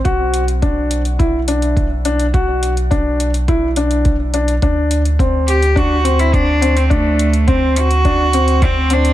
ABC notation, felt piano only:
X:1
M:4/4
L:1/8
Q:1/4=105
K:Bphr
V:1 name="Felt piano"
F2 D2 E D2 D | F2 D2 E D2 D | D2 C2 D C2 C | D2 C2 D C2 C |]